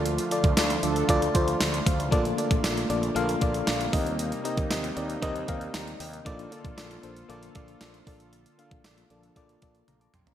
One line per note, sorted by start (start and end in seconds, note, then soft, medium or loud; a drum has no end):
0.00 0.17 D2 loud
0.00 3.89 D3 medium
0.00 2.10 F3 medium
0.00 3.89 A3 medium
0.00 0.20 F4 medium
0.00 3.89 F4 medium
0.00 0.21 A4 medium
0.00 0.21 D5 medium
0.06 closed hi-hat medium
0.18 closed hi-hat medium
0.31 0.50 F4 medium
0.31 0.50 A4 medium
0.31 0.51 D5 loud
0.31 closed hi-hat medium
0.44 0.53 D2 loud
0.44 kick loud
0.44 closed hi-hat soft
0.57 0.76 D2 loud
0.57 0.76 F4 medium
0.57 0.76 A4 medium
0.57 0.77 D5 loud
0.57 snare loud
0.57 closed hi-hat loud
0.57 tambourine medium
0.70 closed hi-hat medium
0.82 1.02 D2 medium
0.82 1.05 F3 loud
0.82 1.05 D4 medium
0.82 1.02 F4 medium
0.82 1.05 A4 loud
0.82 1.02 A4 medium
0.82 1.03 D5 medium
0.82 closed hi-hat medium
0.96 closed hi-hat soft
1.08 1.27 D2 loud
1.08 1.28 F4 loud
1.08 1.28 A4 loud
1.08 1.28 D5 loud
1.08 kick medium
1.08 closed hi-hat medium
1.22 closed hi-hat medium
1.34 1.53 D2 loud
1.34 1.54 F4 loud
1.34 1.54 A4 medium
1.34 1.54 C5 loud
1.34 kick medium
1.34 closed hi-hat medium
1.48 closed hi-hat medium
1.61 1.79 D2 medium
1.61 snare loud
1.61 closed hi-hat medium
1.61 tambourine medium
1.73 1.86 A4 medium
1.73 1.86 D5 medium
1.73 closed hi-hat medium
1.86 2.12 D2 medium
1.86 1.99 C5 medium
1.86 1.98 F5 medium
1.86 kick loud
1.86 closed hi-hat medium
1.99 2.11 A4 medium
1.99 2.11 D5 medium
1.99 closed hi-hat medium
2.11 2.31 A#1 loud
2.11 2.31 A#3 loud
2.11 10.34 A#3 medium
2.11 2.31 D4 loud
2.11 2.31 F4 medium
2.11 2.31 A4 medium
2.11 2.31 D5 loud
2.11 kick loud
2.11 closed hi-hat medium
2.25 closed hi-hat medium
2.37 2.57 A#3 medium
2.37 2.57 D4 medium
2.37 2.57 F4 medium
2.37 2.57 A4 medium
2.37 2.57 D5 medium
2.37 closed hi-hat medium
2.51 2.60 A#1 medium
2.51 kick loud
2.51 closed hi-hat medium
2.63 2.83 A#1 loud
2.63 2.83 A#3 medium
2.63 2.83 D4 medium
2.63 2.83 F4 medium
2.63 2.83 A4 medium
2.63 2.83 D5 loud
2.63 snare loud
2.63 closed hi-hat loud
2.63 tambourine medium
2.77 closed hi-hat medium
2.89 3.08 A#1 loud
2.89 3.08 A#3 medium
2.89 3.09 D4 medium
2.89 3.09 F4 medium
2.89 3.09 A4 medium
2.89 3.09 D5 loud
2.89 closed hi-hat medium
3.03 closed hi-hat medium
3.15 3.34 A#1 loud
3.15 3.34 A#3 loud
3.15 3.35 D4 loud
3.15 3.35 F4 loud
3.15 3.35 A4 loud
3.15 3.35 F5 loud
3.15 closed hi-hat medium
3.29 closed hi-hat medium
3.41 3.60 A#1 loud
3.41 3.60 A#3 medium
3.41 3.60 D4 medium
3.41 3.60 F4 medium
3.41 3.61 A4 medium
3.41 3.61 D5 loud
3.41 kick loud
3.41 closed hi-hat medium
3.54 closed hi-hat medium
3.66 3.86 A#1 loud
3.66 3.86 A#3 medium
3.66 3.86 D4 medium
3.66 3.86 F4 medium
3.66 3.86 A4 medium
3.66 3.86 D5 loud
3.66 snare loud
3.66 closed hi-hat loud
3.66 tambourine medium
3.81 closed hi-hat medium
3.92 4.30 D#2 loud
3.92 6.24 C3 medium
3.92 6.24 G3 medium
3.92 4.34 C4 medium
3.92 4.34 D#4 medium
3.92 6.24 D#4 medium
3.92 4.34 G4 medium
3.92 4.34 A#4 medium
3.92 4.35 D#5 loud
3.92 kick loud
3.92 open hi-hat medium
4.07 closed hi-hat medium
4.19 closed hi-hat medium
4.32 closed hi-hat medium
4.44 4.64 C4 medium
4.44 4.64 D#4 medium
4.44 4.64 G4 medium
4.44 4.64 A#4 medium
4.44 4.64 D#5 loud
4.44 closed hi-hat medium
4.57 4.67 D#2 loud
4.57 kick loud
4.57 closed hi-hat medium
4.70 4.89 D#2 medium
4.70 4.90 C4 medium
4.70 4.90 D#4 medium
4.70 4.90 G4 medium
4.70 4.90 A#4 medium
4.70 4.90 D#5 loud
4.70 snare loud
4.70 closed hi-hat loud
4.70 tambourine medium
4.84 closed hi-hat medium
4.96 5.15 D#2 loud
4.96 5.15 C4 medium
4.96 5.15 D#4 medium
4.96 5.16 G4 medium
4.96 5.16 A#4 medium
4.96 5.16 D5 loud
4.96 closed hi-hat medium
5.10 closed hi-hat soft
5.22 5.41 D#2 loud
5.22 5.41 C4 loud
5.22 5.41 D#4 loud
5.22 5.41 G4 loud
5.22 5.42 A#4 loud
5.22 5.42 D#5 loud
5.22 kick medium
5.22 closed hi-hat medium
5.36 closed hi-hat medium
5.47 5.67 D#2 medium
5.47 5.67 C4 loud
5.47 5.67 D#4 medium
5.47 5.67 G4 medium
5.47 5.68 A#4 medium
5.47 5.68 F5 loud
5.47 kick loud
5.47 closed hi-hat medium
5.61 closed hi-hat medium
5.74 5.93 D#2 medium
5.74 5.99 F5 medium
5.74 5.99 A#5 medium
5.74 snare loud
5.74 closed hi-hat medium
5.74 tambourine medium
5.88 closed hi-hat medium
6.00 6.19 D#2 loud
6.00 6.13 D5 medium
6.00 6.13 G5 medium
6.00 open hi-hat medium
6.13 6.38 A#4 medium
6.13 6.38 D#5 medium
6.13 closed hi-hat medium
6.25 6.45 A#1 loud
6.25 8.05 D3 medium
6.25 6.45 A#3 loud
6.25 6.45 D4 loud
6.25 6.45 F4 loud
6.25 10.34 F4 medium
6.25 6.45 A4 medium
6.25 10.34 A4 medium
6.25 6.45 D5 loud
6.25 kick loud
6.25 closed hi-hat medium
6.39 closed hi-hat medium
6.51 6.71 A#3 medium
6.51 6.71 D4 medium
6.51 6.71 F4 medium
6.51 6.71 A4 medium
6.51 6.71 D5 loud
6.51 closed hi-hat medium
6.65 6.74 A#1 medium
6.65 kick loud
6.65 closed hi-hat medium
6.77 6.96 A#1 loud
6.77 6.96 A#3 medium
6.77 6.96 D4 medium
6.77 6.97 F4 medium
6.77 6.97 A4 medium
6.77 6.97 D5 loud
6.77 snare loud
6.77 closed hi-hat loud
6.77 tambourine medium
6.91 closed hi-hat medium
7.02 7.22 A#1 medium
7.02 7.22 A#3 medium
7.02 7.22 D4 medium
7.02 7.22 F4 medium
7.02 7.23 A4 medium
7.02 7.23 C5 loud
7.02 closed hi-hat medium
7.16 closed hi-hat medium
7.29 7.48 A#1 loud
7.29 7.48 A#3 loud
7.29 7.48 D4 loud
7.29 7.48 F4 loud
7.29 7.49 A4 loud
7.29 7.49 D5 loud
7.29 closed hi-hat medium
7.43 closed hi-hat medium
7.55 7.74 A#1 loud
7.55 7.74 A#3 loud
7.55 7.74 D4 medium
7.55 7.74 F4 medium
7.55 7.75 A4 medium
7.55 7.75 D5 loud
7.55 kick loud
7.55 closed hi-hat medium
7.68 closed hi-hat medium
7.80 8.00 A#1 medium
7.80 8.00 A#3 medium
7.80 8.00 D4 medium
7.80 8.00 F4 medium
7.80 8.00 A4 medium
7.80 8.01 D5 loud
7.80 snare loud
7.80 closed hi-hat medium
7.80 tambourine medium
7.94 closed hi-hat medium
8.06 8.44 A#1 loud
8.06 10.34 D3 medium
8.06 8.48 A#3 medium
8.06 8.48 D4 medium
8.06 8.48 F4 medium
8.06 8.48 A4 medium
8.06 8.49 D5 loud
8.06 kick loud
8.06 open hi-hat medium
8.20 closed hi-hat medium
8.33 closed hi-hat medium
8.46 closed hi-hat medium
8.58 8.78 A#3 medium
8.58 8.78 D4 medium
8.58 8.78 F4 medium
8.58 8.78 A4 medium
8.58 8.78 F5 loud
8.58 closed hi-hat medium
8.71 8.81 A#1 loud
8.71 kick loud
8.71 closed hi-hat soft
8.84 9.03 A#1 loud
8.84 9.03 A#3 medium
8.84 9.04 D4 medium
8.84 9.04 F4 medium
8.84 9.04 A4 medium
8.84 9.04 D5 medium
8.84 snare loud
8.84 closed hi-hat loud
8.84 tambourine medium
8.98 closed hi-hat medium
9.10 9.29 A#1 loud
9.10 9.33 F3 medium
9.10 9.29 A#3 medium
9.10 9.30 D4 medium
9.10 9.32 D4 medium
9.10 9.30 F4 medium
9.10 9.32 A4 loud
9.10 9.30 A4 medium
9.10 9.30 D5 medium
9.10 closed hi-hat medium
9.23 closed hi-hat soft
9.36 9.55 A#1 loud
9.36 9.55 A#3 loud
9.36 9.55 D4 loud
9.36 9.55 F4 loud
9.36 9.56 A4 loud
9.36 9.56 D5 loud
9.36 kick medium
9.36 closed hi-hat medium
9.49 closed hi-hat medium
9.62 9.81 A#1 medium
9.62 9.81 A#3 medium
9.62 9.81 D4 medium
9.62 9.82 F4 medium
9.62 9.82 A4 medium
9.62 9.82 D5 loud
9.62 kick medium
9.62 closed hi-hat medium
9.75 closed hi-hat medium
9.88 10.07 A#1 medium
9.88 10.01 F5 medium
9.88 10.00 A#5 medium
9.88 closed hi-hat medium
9.88 high tom medium
10.01 10.14 A5 medium
10.01 10.13 D6 medium
10.01 closed hi-hat medium
10.14 10.33 A#1 medium
10.14 10.27 G5 medium
10.14 10.26 C6 medium
10.14 closed hi-hat medium
10.14 mid tom loud
10.27 10.34 F5 medium
10.27 10.34 A#5 medium
10.27 closed hi-hat medium
10.27 floor tom medium